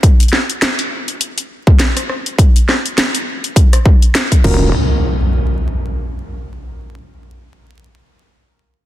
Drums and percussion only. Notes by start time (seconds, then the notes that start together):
0.03 kick, closed hi-hat
0.20 closed hi-hat
0.23 closed hi-hat
0.28 closed hi-hat
0.33 snare
0.50 closed hi-hat
0.62 snare, closed hi-hat
0.79 closed hi-hat
1.08 closed hi-hat
1.21 closed hi-hat
1.38 closed hi-hat
1.67 kick
1.80 snare, closed hi-hat
1.97 cross-stick, closed hi-hat
2.09 cross-stick
2.26 closed hi-hat
2.38 kick, closed hi-hat
2.56 closed hi-hat
2.69 cross-stick, snare
2.86 closed hi-hat
2.98 snare, closed hi-hat
3.15 closed hi-hat
3.44 closed hi-hat
3.56 kick, closed hi-hat
3.73 cross-stick, closed hi-hat
3.85 kick
4.02 closed hi-hat
4.15 snare, closed hi-hat
4.32 kick, closed hi-hat
4.44 kick, crash